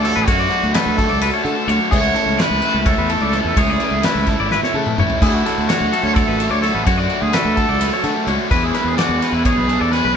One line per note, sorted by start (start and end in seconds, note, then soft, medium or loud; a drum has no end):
0.00 0.12 D2 medium
0.00 0.25 D3 loud
0.00 0.26 F#3 loud
0.00 0.28 A4 loud
0.05 0.28 A3 medium
0.05 0.28 D4 loud
0.05 0.28 F#4 loud
0.05 0.15 C#5 medium
0.05 snare soft
0.05 ride loud
0.15 0.26 A1 loud
0.15 0.27 B4 medium
0.26 0.47 F#2 loud
0.26 0.74 D3 loud
0.26 0.73 F#3 loud
0.26 0.53 A3 loud
0.26 0.50 D4 loud
0.26 0.76 F#4 loud
0.26 0.49 F#4 loud
0.26 0.39 C#5 loud
0.26 kick loud
0.26 ride loud
0.40 0.63 D5 medium
0.50 0.74 A3 medium
0.50 0.75 D4 medium
0.50 0.76 F#4 medium
0.50 ride medium
0.63 0.73 D2 medium
0.74 1.21 F#3 medium
0.74 1.01 A3 medium
0.74 0.99 D4 medium
0.74 0.97 F#4 medium
0.74 1.69 A4 loud
0.74 0.98 B4 medium
0.74 snare loud
0.74 ride loud
0.86 1.06 D2 loud
0.98 1.47 A3 medium
0.98 1.45 D4 medium
0.98 1.43 F#4 medium
0.98 1.10 A4 medium
0.98 kick medium
0.98 snare soft
0.98 ride medium
1.10 1.30 C#2 medium
1.10 1.22 D5 medium
1.21 1.33 B4 medium
1.21 ride loud
1.34 1.45 C#5 medium
1.44 1.55 D3 medium
1.44 1.68 A3 medium
1.44 1.68 D4 medium
1.44 1.69 F#4 medium
1.44 1.68 A4 medium
1.44 ride medium
1.67 1.78 D2 loud
1.67 1.90 D3 loud
1.67 1.90 F#3 loud
1.67 1.93 A3 loud
1.67 1.91 D4 loud
1.67 1.92 F#4 loud
1.67 1.92 C#5 medium
1.67 ride medium
1.91 2.12 C#2 loud
1.91 2.38 C#3 loud
1.91 2.18 E3 loud
1.91 2.16 A3 loud
1.91 2.14 E4 loud
1.91 2.02 G#4 loud
1.91 2.42 C#5 loud
1.91 kick loud
1.91 crash loud
2.03 2.15 F#4 medium
2.15 2.40 E3 medium
2.15 2.41 A3 medium
2.15 2.42 E4 medium
2.15 2.39 A4 medium
2.15 ride medium
2.26 2.36 C#2 medium
2.38 2.86 C#3 medium
2.38 2.64 E3 medium
2.38 2.63 A3 medium
2.38 2.60 E4 loud
2.38 2.87 B4 loud
2.38 2.63 C#5 medium
2.38 snare loud
2.38 ride loud
2.51 2.61 C#2 medium
2.61 3.12 E3 medium
2.61 3.11 A3 medium
2.61 3.08 E4 medium
2.61 2.86 A4 medium
2.61 ride medium
2.74 2.94 C#2 loud
2.86 3.59 A4 loud
2.86 2.98 C#5 medium
2.86 kick loud
2.86 ride loud
2.98 3.18 E2 loud
2.98 3.10 B4 medium
3.09 3.33 E3 medium
3.09 3.35 A3 medium
3.09 3.35 E4 medium
3.09 3.22 A4 medium
3.09 ride medium
3.21 3.40 C#2 medium
3.21 3.34 D5 medium
3.32 3.55 C#3 medium
3.32 3.57 E3 medium
3.32 3.59 A3 loud
3.32 3.59 E4 loud
3.32 3.46 C#5 medium
3.32 snare soft
3.32 ride medium
3.45 3.55 E2 medium
3.45 3.57 B4 medium
3.56 3.76 C#2 loud
3.56 4.02 C#3 loud
3.56 3.82 E3 loud
3.56 3.81 A3 loud
3.56 3.79 E4 loud
3.56 4.07 G#4 loud
3.56 3.70 C#5 loud
3.56 kick loud
3.56 ride loud
3.70 3.93 D5 medium
3.80 4.04 E3 medium
3.80 4.06 A3 medium
3.80 4.06 E4 medium
3.80 ride medium
3.91 4.01 C#2 medium
4.03 4.50 C#3 medium
4.03 4.29 E3 medium
4.03 4.28 A3 medium
4.03 4.99 E4 medium
4.03 4.25 E4 medium
4.03 4.28 B4 medium
4.03 snare loud
4.03 ride loud
4.15 4.35 C#2 loud
4.26 4.75 E3 medium
4.26 4.75 A3 medium
4.26 4.71 E4 medium
4.26 4.39 A4 medium
4.26 kick medium
4.26 snare soft
4.26 ride medium
4.39 4.58 G#1 medium
4.39 4.51 D5 medium
4.51 4.63 B4 medium
4.51 snare medium
4.63 4.75 C#5 medium
4.63 snare medium
4.73 4.84 C#3 medium
4.73 4.96 E3 medium
4.73 4.98 A3 medium
4.73 4.99 E4 medium
4.73 4.98 A4 medium
4.86 mid tom medium
4.96 5.08 G#1 loud
4.96 5.19 C#3 loud
4.96 5.20 E3 loud
4.96 5.22 A3 medium
4.96 5.21 E4 medium
4.96 5.22 C#5 medium
4.96 mid tom loud
5.10 floor tom loud
5.20 5.41 D2 loud
5.20 6.61 D3 loud
5.20 5.67 F#3 loud
5.20 5.47 A3 loud
5.20 5.45 D4 loud
5.20 5.69 E4 loud
5.20 5.43 F#4 loud
5.20 5.34 G#4 loud
5.20 kick loud
5.20 crash loud
5.20 splash medium
5.34 5.45 F#4 medium
5.43 5.68 A3 medium
5.43 5.69 D4 medium
5.43 5.71 F#4 medium
5.43 5.69 A4 medium
5.43 snare soft
5.43 ride medium
5.58 5.67 D2 medium
5.67 6.62 F#3 medium
5.67 5.94 A3 medium
5.67 5.93 D4 medium
5.67 6.05 F#4 loud
5.67 5.92 F#4 medium
5.67 5.92 C#5 medium
5.67 snare loud
5.67 ride loud
5.81 5.90 D2 medium
5.92 6.40 A3 medium
5.92 6.40 D4 medium
5.92 6.38 F#4 medium
5.92 6.16 A4 medium
5.92 ride medium
6.03 6.23 D2 loud
6.03 6.16 C#5 loud
6.14 6.52 A4 loud
6.14 6.28 C#5 medium
6.14 kick loud
6.14 ride loud
6.27 6.47 A1 loud
6.27 6.40 B4 medium
6.38 6.62 A3 medium
6.38 6.64 D4 medium
6.38 6.65 F#4 medium
6.38 6.50 A4 medium
6.38 ride medium
6.50 6.70 D2 medium
6.50 6.61 C#5 medium
6.50 6.62 D5 medium
6.61 6.84 D3 medium
6.61 6.86 F#3 medium
6.61 6.86 A3 loud
6.61 6.87 D4 loud
6.61 6.88 F#4 loud
6.61 6.86 A4 loud
6.61 6.75 C#5 medium
6.61 snare soft
6.61 ride medium
6.74 6.84 A1 loud
6.74 6.86 B4 medium
6.85 7.06 F#2 loud
6.85 7.32 D3 medium
6.85 7.33 F#3 loud
6.85 7.12 A3 loud
6.85 7.11 D4 loud
6.85 7.23 F#4 loud
6.85 7.09 F#4 loud
6.85 6.98 C#5 medium
6.85 kick loud
6.85 ride loud
6.98 7.21 D5 medium
7.10 7.35 D4 medium
7.10 7.36 F#4 medium
7.10 ride medium
7.14 7.33 A3 medium
7.21 7.31 D2 medium
7.21 7.35 G#4 medium
7.33 8.27 F#3 medium
7.33 7.59 A3 medium
7.33 7.58 D4 medium
7.33 7.56 F#4 medium
7.33 8.28 A4 loud
7.33 7.57 B4 loud
7.33 snare loud
7.33 ride loud
7.45 7.64 D2 loud
7.56 8.06 A3 medium
7.56 8.05 D4 medium
7.56 8.03 F#4 medium
7.56 7.68 A4 medium
7.56 kick medium
7.56 ride medium
7.69 7.88 C#2 medium
7.69 7.80 D5 medium
7.80 7.92 B4 medium
7.80 snare soft
7.80 ride loud
7.93 8.04 C#5 medium
8.04 8.13 D3 medium
8.04 8.28 A3 medium
8.04 8.29 D4 medium
8.04 8.30 F#4 medium
8.04 8.27 A4 medium
8.04 snare soft
8.04 ride medium
8.26 8.37 C#2 medium
8.26 8.49 D3 loud
8.26 8.51 F#3 loud
8.26 8.50 A3 loud
8.26 8.53 D4 loud
8.26 8.53 F#4 loud
8.26 8.51 C#5 medium
8.26 ride medium
8.50 8.70 E2 loud
8.50 8.96 E3 medium
8.50 8.76 B3 loud
8.50 8.75 D4 loud
8.50 8.87 E4 medium
8.50 8.73 G#4 loud
8.50 8.63 B4 loud
8.50 kick loud
8.50 crash loud
8.63 8.75 G#4 medium
8.73 8.98 B3 medium
8.73 8.99 D4 medium
8.73 9.00 G#4 medium
8.73 8.98 B4 medium
8.73 snare soft
8.73 ride medium
8.85 8.95 E2 medium
8.85 8.96 G#4 medium
8.96 9.72 E3 medium
8.96 9.23 B3 medium
8.96 9.21 D4 medium
8.96 9.35 F#4 loud
8.96 9.21 G#4 medium
8.96 9.22 D5 medium
8.96 snare loud
8.96 ride loud
9.09 9.19 E2 medium
9.21 9.70 B3 medium
9.21 9.68 D4 medium
9.21 9.67 G#4 medium
9.21 9.45 B4 medium
9.21 snare soft
9.21 ride medium
9.32 9.52 E2 medium
9.32 9.46 E4 loud
9.45 9.81 G#4 loud
9.45 9.58 C#5 medium
9.45 kick loud
9.45 ride loud
9.56 9.76 B1 loud
9.56 9.70 B4 medium
9.67 9.91 B3 medium
9.67 9.92 D4 medium
9.67 9.95 G#4 medium
9.67 9.81 A4 medium
9.67 ride medium
9.80 10.00 E2 medium
9.80 9.93 A4 loud
9.80 9.93 D5 medium
9.91 10.13 E3 medium
9.91 10.15 B3 loud
9.91 10.16 D4 medium
9.91 10.17 G#4 loud
9.91 10.17 B4 loud
9.91 10.04 C#5 medium
9.91 snare soft
9.91 ride medium
10.05 10.14 B1 loud
10.05 10.15 B4 medium